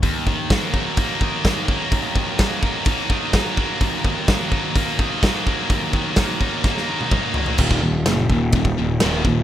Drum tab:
CC |----------------|----------------|----------------|----------------|
RD |----------------|----------------|----------------|----------------|
HH |o---o---o---o---|o---o---o---o---|o---o---o---o---|o---o-----------|
SD |----o-------o---|----o-------o---|----o-------o---|----o---oo------|
T1 |----------------|----------------|----------------|-----------o----|
T2 |----------------|----------------|----------------|------------o---|
FT |----------------|----------------|----------------|--------------oo|
BD |o-o-o-o-o-o-o-o-|o-o-o-o-o-o-o-o-|o-o-o-o-o-o-o-o-|o-o-o-o-o---o---|

CC |x---------------|
RD |----b---b---b---|
HH |----------------|
SD |----o-------o---|
T1 |----------------|
T2 |----------------|
FT |----------------|
BD |oo----o-oo----o-|